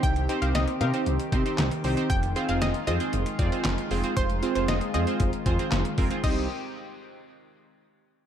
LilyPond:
<<
  \new Staff \with { instrumentName = "Synth pluck" } { \time 4/4 \key c \minor \tempo 4 = 116 g''8 r16 f''16 ees''8 f''16 r2 r16 | g''8 r16 f''16 ees''8 ees''16 r2 r16 | c''8 r16 c''16 ees''8 ees''16 r2 r16 | ees''8 r2. r8 | }
  \new Staff \with { instrumentName = "Analog polysynth" } { \time 4/4 \key c \minor <c' ees' g' c''>16 r16 <c' ees' g' c''>16 <c' ees' g' c''>8 r16 <c' ees' g' bes'>16 <c' ees' g' c''>8 r16 <c' ees' g' c''>16 <c' ees' g' c''>8 r16 <c' ees' g' c''>16 <c' ees' g' c''>16 | r8 <c' f' aes' c''>16 <c' f' aes' c''>8 r16 <c' f' aes' c''>16 <c' f' aes' c''>8 r16 <c' f' aes' d''>16 <c' f' aes' c''>8 r16 <c' f' aes' c''>16 <c' f' aes' c''>16~ | <c' f' aes' c''>16 r16 <c' f' aes' c''>16 <c' f' aes' c''>8 r16 <c' f' aes' c''>16 <c' f' aes' c''>8 r16 <c' f' aes' c''>16 <c' f' aes' c''>8 r16 <c' f' aes' bes'>16 <c' f' aes' c''>16 | <c' ees' g' c''>8 r2. r8 | }
  \new Staff \with { instrumentName = "Analog synth pad" } { \time 4/4 \key c \minor << { <c' g'>1 | <aes f'>1~ | <aes f'>1 | <ees c' g'>8 r2. r8 | } \\ { ees1~ | ees1~ | ees1 | r1 | } >> }
  \new Staff \with { instrumentName = "Analog synth bass" } { \clef bass \time 4/4 \key c \minor c,16 c,16 r16 c,16 c,16 r16 c16 r16 c,16 r16 c16 r16 c,16 r16 c,16 r16 | f,,16 f,,16 r16 f,,16 f,,16 r16 f,16 r16 f,,16 r16 f,16 r16 f,,16 r16 f,,16 r16 | f,,16 f,,16 r16 f,,16 f,,16 r16 f,16 r16 f,,16 r16 f,16 r16 f,,16 r16 f,,16 r16 | c,8 r2. r8 | }
  \new DrumStaff \with { instrumentName = "Drums" } \drummode { \time 4/4 <hh bd>16 hh16 hh16 hh16 <hh sn>16 hh16 hh16 hh16 hh16 hh16 <hh bd>16 hh16 <hc hh sn>16 hh16 hho16 hh16 | <hh bd>16 hh16 hh16 hh16 <hh sn>16 hh16 hh16 hh16 hh16 hh16 <hh bd>16 hh16 <hc hh sn>16 hh16 hho16 hh16 | <hh bd>16 hh16 hh16 hh16 <hh sn>16 hh16 hh16 hh16 <hh bd>16 hh16 <hh bd>16 hh16 <hc hh sn>16 hh16 <hho bd>16 hh16 | <cymc bd>4 r4 r4 r4 | }
>>